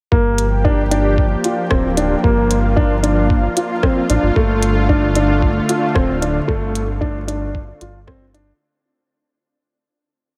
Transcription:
0.11 analog synth bass G1, analog synth pad F3 A#3 G4, grand piano A#3, kick
0.38 closed hi-hat
0.65 grand piano D4, kick
0.91 grand piano D4, closed hi-hat
1.18 kick
1.44 grand piano F4, closed hi-hat
1.70 analog synth bass D1, grand piano C4, kick, cross-stick
1.97 grand piano D4, closed hi-hat
2.24 analog synth bass G1, grand piano A#3, analog synth pad F4, kick
2.51 closed hi-hat
2.76 grand piano D4, kick
3.03 grand piano D4, closed hi-hat
3.30 kick
3.56 grand piano F4, closed hi-hat
3.83 grand piano C4, kick, cross-stick
4.10 analog synth bass A1, grand piano D4, closed hi-hat
4.23 analog synth bass G1
4.36 analog synth bass G1, analog synth pad D3 A3, grand piano A3, kick
4.63 closed hi-hat
4.89 grand piano D4, kick
5.16 grand piano D4, closed hi-hat
5.42 kick
5.69 grand piano F4, closed hi-hat
5.95 analog synth bass D1, grand piano C4, kick, cross-stick
6.22 grand piano D4, closed hi-hat
6.48 analog synth bass G1, grand piano A3, kick
6.75 closed hi-hat
7.01 grand piano D4, kick
7.28 grand piano D4, closed hi-hat
7.55 kick
7.81 analog synth bass G1, grand piano F4, closed hi-hat
8.07 grand piano C4, kick, cross-stick
8.34 grand piano D4, closed hi-hat

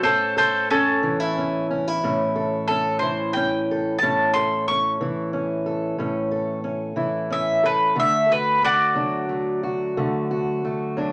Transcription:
0.02 steel-string acoustic guitar A2 C#4, mandolin A4 C5
0.37 steel-string acoustic guitar A4, mandolin A4 C5
0.70 steel-string acoustic guitar C#4, mandolin C#4 A4
1.03 steel-string acoustic guitar E3 C#4
1.20 steel-string acoustic guitar E4
1.38 steel-string acoustic guitar C#4
1.71 steel-string acoustic guitar C#4
1.87 steel-string acoustic guitar E4
2.04 steel-string acoustic guitar A2 C#4
2.36 steel-string acoustic guitar A4
2.68 steel-string acoustic guitar C#4, mandolin A4
2.99 steel-string acoustic guitar E3 E4, mandolin C5
3.33 steel-string acoustic guitar C#4, mandolin G5
3.71 steel-string acoustic guitar A4
3.99 steel-string acoustic guitar A2, mandolin A5
4.03 steel-string acoustic guitar C#4
4.34 steel-string acoustic guitar A4, mandolin C6
4.68 steel-string acoustic guitar C#4, mandolin C#6
5.01 steel-string acoustic guitar E3 E4
5.33 steel-string acoustic guitar C#4
5.66 steel-string acoustic guitar A4
5.98 steel-string acoustic guitar A2 C#4
6.31 steel-string acoustic guitar A4
6.64 steel-string acoustic guitar C#4
6.96 steel-string acoustic guitar E3 E4
7.30 steel-string acoustic guitar C#4, mandolin E5
7.64 steel-string acoustic guitar A4, mandolin B4
7.95 steel-string acoustic guitar D3 A3
8.00 mandolin E5
8.29 steel-string acoustic guitar F#4, mandolin B4
8.63 steel-string acoustic guitar A3, mandolin F#4 D5
8.95 steel-string acoustic guitar F#3 D4
9.29 steel-string acoustic guitar A3
9.63 steel-string acoustic guitar F#4
9.97 steel-string acoustic guitar D3 A3
10.31 steel-string acoustic guitar F#4
10.65 steel-string acoustic guitar A3
10.97 steel-string acoustic guitar F#3 D4

